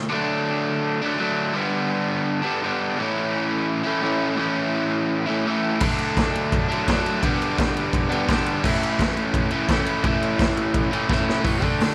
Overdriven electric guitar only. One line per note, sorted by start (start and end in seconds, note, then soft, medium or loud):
0.10 1.00 D3 medium
0.10 1.01 F#3 loud
0.10 1.01 A3 loud
0.14 1.00 D4 loud
1.02 1.19 F#3 medium
1.02 1.19 A3 medium
1.02 1.18 D4 loud
1.06 1.17 D3 medium
1.18 1.54 D3 medium
1.18 1.55 F#3 medium
1.18 1.55 A3 medium
1.22 1.56 D4 medium
1.53 2.43 G2 loud
1.53 2.43 D3 medium
1.53 2.44 G3 loud
1.53 2.43 B3 loud
1.58 2.41 D4 loud
2.42 2.62 D3 medium
2.42 2.62 G3 medium
2.42 2.61 B3 medium
2.42 2.60 D4 medium
2.46 2.61 G2 medium
2.62 2.97 G2 medium
2.62 2.98 D3 medium
2.62 2.98 G3 medium
2.62 2.98 B3 medium
2.62 2.99 D4 medium
2.97 3.86 A2 loud
2.97 3.86 E3 loud
2.97 3.87 A3 loud
2.97 3.84 C#4 loud
3.02 3.82 E4 loud
3.84 4.03 A3 medium
3.84 4.03 C#4 medium
3.84 4.02 E4 medium
3.88 4.00 A2 medium
3.88 4.02 E3 medium
4.01 4.35 A2 medium
4.01 4.36 E3 medium
4.01 4.39 A3 medium
4.01 4.39 C#4 medium
4.06 4.39 E4 medium
4.36 5.26 A2 loud
4.36 5.26 E3 loud
4.36 5.27 A3 loud
4.36 5.27 C#4 loud
4.41 5.25 E4 loud
5.26 5.46 E3 medium
5.26 5.46 A3 medium
5.26 5.45 C#4 medium
5.26 5.44 E4 loud
5.31 5.45 A2 medium
5.46 5.81 A2 medium
5.46 5.80 E3 medium
5.46 5.81 A3 medium
5.46 5.82 C#4 medium
5.50 5.83 E4 medium
5.80 6.68 D3 loud
5.80 6.69 F#3 medium
5.80 6.69 A3 loud
5.84 6.67 D4 loud
6.68 6.88 F#3 medium
6.68 6.87 A3 medium
6.68 6.86 D4 loud
6.73 6.87 D3 medium
6.88 7.22 D3 medium
6.88 7.23 F#3 medium
6.88 7.24 A3 medium
6.92 7.24 D4 medium
7.22 8.09 G2 medium
7.22 8.10 D3 loud
7.22 8.11 G3 loud
7.22 8.09 B3 loud
7.26 8.08 D4 loud
8.09 8.27 D3 medium
8.09 8.28 G3 medium
8.09 8.27 B3 loud
8.09 8.27 D4 loud
8.13 8.26 G2 medium
8.27 8.62 G2 medium
8.27 8.62 D3 medium
8.27 8.63 G3 medium
8.27 8.63 B3 medium
8.27 8.64 D4 loud
8.63 9.55 A2 medium
8.63 9.54 E3 loud
8.63 9.53 A3 loud
8.63 9.52 C#4 loud
8.67 9.51 E4 loud
9.51 9.68 E3 medium
9.51 9.71 A3 medium
9.51 9.68 C#4 loud
9.51 9.68 E4 loud
9.55 9.67 A2 medium
9.68 10.03 A2 medium
9.68 10.03 E3 medium
9.68 10.05 A3 medium
9.68 10.05 C#4 medium
9.74 10.05 E4 medium
10.04 10.91 A2 loud
10.04 10.91 E3 loud
10.04 10.92 A3 loud
10.04 10.91 C#4 loud
10.08 10.90 E4 loud
10.91 11.09 E3 medium
10.91 11.09 A3 medium
10.91 11.09 C#4 medium
10.91 11.08 E4 medium
10.95 11.08 A2 medium
11.09 11.42 A2 medium
11.09 11.43 E3 medium
11.09 11.44 A3 medium
11.09 11.45 C#4 medium
11.14 11.46 E4 medium
11.43 11.62 A2 loud
11.43 11.63 E3 loud
11.43 11.63 A3 loud
11.62 11.95 D3 medium
11.62 11.95 A3 medium
11.62 11.95 D4 loud